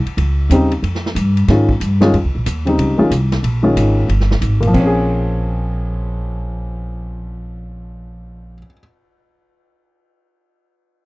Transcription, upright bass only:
0.05 muted upright bass stroke
0.17 C#2
0.49 D#2
0.82 F2
1.15 G2
1.48 G#2
1.80 G2
2.13 F2
2.24 C#2
2.35 A#1
2.46 D#2
2.78 C#2
2.99 muted upright bass stroke
3.11 C2
3.43 A#1
3.76 G#1
4.08 G1
4.41 G#1
4.74 A#1

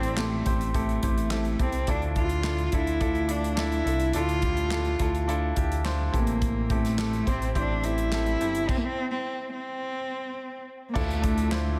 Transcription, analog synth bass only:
Already playing: A1
0.46 A1
1.03 A1
1.59 C2
1.88 D2
2.72 D2
3.01 D2
3.86 C2
4.14 D2
5.00 D2
5.57 D2
6.14 A1
7.27 A1
7.56 A1
8.41 G1
10.95 D2

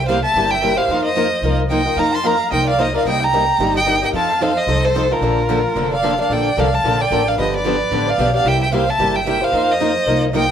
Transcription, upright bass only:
Already playing: C2
0.34 G1
0.88 F2
1.42 C2
1.96 F2
2.51 C2
3.05 C2
3.58 G1
4.13 F2
4.67 C2
5.21 A#1
5.75 F1
6.29 A#1
6.57 C2
6.84 A#1
7.11 A1
7.37 G1
7.91 A1
8.18 B1
8.44 C2
8.98 G1
9.52 F2
10.06 C2

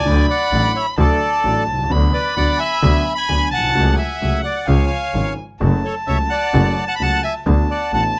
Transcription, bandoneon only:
Already playing: D5 G#5
0.30 D5 F#5
0.76 C#5 E5
0.99 A4 D5
2.13 B4 D5
2.37 D5 F#5
2.58 E5 G#5
3.15 G#5 B5
3.51 F#5 A5
3.96 E5 G#5
4.43 D5 F#5
4.67 C#5 F5
5.84 A4 C#5
6.07 C#5 E5
6.30 D5 F#5
6.87 F#5 A5
6.96 B5
7.02 F#5 A5
7.23 E5 G#5
7.71 D5 F#5
7.94 F#5 A5

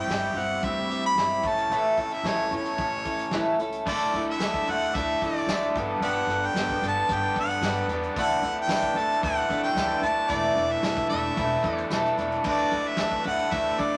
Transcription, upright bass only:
0.07 G1
0.34 G1
0.63 D2
1.16 G1
1.43 A1
1.70 A1
2.23 A1
2.51 E2
2.78 A1
3.33 C#2
3.86 D2
4.14 D2
4.39 D2
4.68 D2
4.95 D2
5.21 D3
5.47 D2
5.75 G1
6.01 G1
6.27 G1
6.54 G1
6.82 G1
7.09 G1
7.36 G2
7.61 G1
7.88 E2
8.16 D2
8.41 D2
8.68 D2
8.94 D2
9.23 D2
9.49 D3
9.75 D2
10.02 D2
10.29 E1
10.55 E1
10.83 E1
11.10 E1
11.37 E1
11.64 E2
11.90 E1
12.18 E1
12.44 D2
12.72 D2
12.99 D2
13.25 D2
13.51 D2
13.79 D3

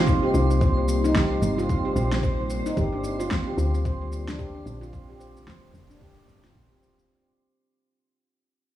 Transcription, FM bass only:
Already playing: G1
0.34 C2
1.42 G1
1.96 A#1
2.77 G1
3.58 D2
4.66 A#1
5.74 F1
6.28 G1
6.55 A#1
6.71 F1

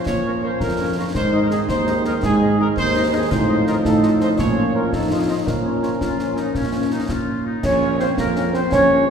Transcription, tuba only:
0.07 A#2
0.61 F2
1.15 G#2
1.69 D#2
2.23 G#2
2.77 D#2
3.31 A2
3.85 A2
4.39 A#2
4.93 F2
5.47 A#2
6.01 A#2
6.55 A#2
7.09 A#2
7.64 A#1
8.18 F2
8.72 A#1

